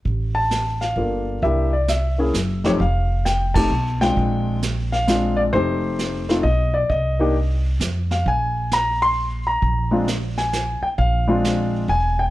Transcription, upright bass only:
X:1
M:3/4
L:1/8
Q:"Swing" 1/4=132
K:Fmix
V:1 name="Upright bass" clef=bass
A,,,4 G,,,2 | C,,4 _G,,,2 | F,,,4 =B,,,2 | B,,,6 |
F,,,4 =B,,,2 | C,,4 F,,2 | B,,,6 | B,,,4- B,,, z |
B,,,4 =E,,,2 |]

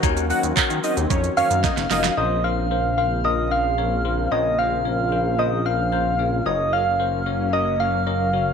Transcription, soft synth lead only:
X:1
M:4/4
L:1/8
Q:1/4=112
K:Bbm
V:1 name="Soft synth lead"
z4 z f3 | e f2 f e f3 | e f3 e f3 | e f3 e f3 |]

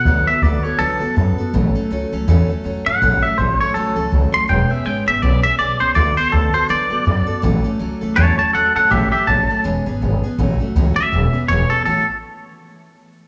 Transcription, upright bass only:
X:1
M:4/4
L:1/8
Q:"Swing" 1/4=163
K:A
V:1 name="Upright bass" clef=bass
D,, z D,, z D,, F,, F,, z | A,,, z C,, C,, E,, z E,, =G,, | A,,, z A,,, z A,,, C,, C,, z | E,,, z G,,, G,,, B,,, z B,,, C,, |
D,, z D,, z D,, F,, F,, z | A,,, z C,, C,, E,, z E,, =G,, | A,,, z A,,, z E,,, G,,, G,,, z | A,,, z C,, z E,,, z E,,, z |
A,,, z6 z |]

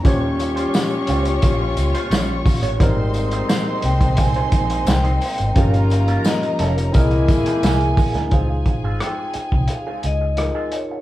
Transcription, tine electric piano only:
X:1
M:4/4
L:1/8
Q:1/4=87
K:Dblyd
V:1 name="Tine electric piano"
[DFGd]8 | [G,B,CEB]8 | [DFGAB]4 [C=E^GB]4 | [EFAc]6 [EFAB]2 |]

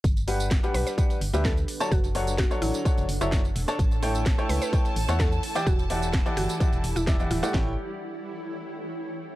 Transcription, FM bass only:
X:1
M:4/4
L:1/16
Q:1/4=128
K:Amix
V:1 name="FM bass" clef=bass
G,,,4- G,,, z B,,, z3 G,,, D,,3 z2 | F,,,4- F,,, z A,,, z2 F,,, F,,, F,,,3 E,,, z | A,,,4- A,,, z C,, z3 A,,, E,,3 z2 | E,,,4- E,,, z G,,, z2 E,,, E,,, E,,,3 D,,, z |
A,,,2 z12 z2 |]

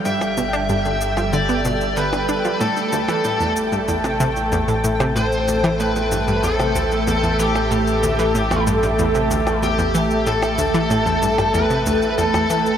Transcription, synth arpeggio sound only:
X:1
M:4/4
L:1/16
Q:1/4=94
K:Am
V:1 name="Synth arpeggio sound" clef=bass
G,, z B,, D G,, D, z F, D, B, B,, z D, D, D F, | A,, z D,, E, A,, E,, z G,, E,, C, C, z E,, A,, A,, C, | A,, z D,, E, A,, E,, G,, G,, E,, C, D,, z E,, E,, E, z | A,, z D,, E, A,, E,, G,, G,, E,, C, D,, z E,, E,, E, z |
A,, z D,, E, A,, E,, G,, G,, E,, C, D,, z E,, E,, E, z |]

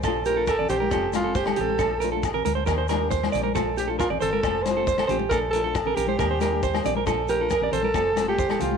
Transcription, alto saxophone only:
X:1
M:4/4
L:1/16
Q:1/4=136
K:Bb
V:1 name="Alto saxophone"
z2 B2 A2 G4 F2 G2 A2- | A2 z12 z2 | z2 G2 F2 A4 c4 c2 | B2 A4 G8 z2 |
z2 B4 A4- A G3 F2 |]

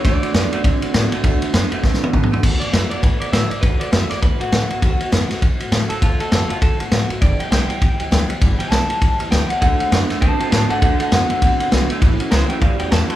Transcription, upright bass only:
X:1
M:4/4
L:1/8
Q:"Swing" 1/4=200
K:Dmix
V:1 name="Upright bass" clef=bass
D,, z F,, z A,, A,, A,, z | D,, z F,, z A,, A,, A,, z | D,, z F,, z A,, A,, A,, z | D,, z F,, z A,, A,, A,, z |
D,, z F,, z A,, A,, A,, z | D,, z F,, z A,, A,, A,, z | G,,, z B,,, z D,, D,, D,, z | G,,, z B,,, z D,, D,, D,, z |
D,, z F,, z A,, A,, A,, z | D,, z F,, z A,, A,, B,,, z | A,,, z ^C,, z E,, E,, E,, z |]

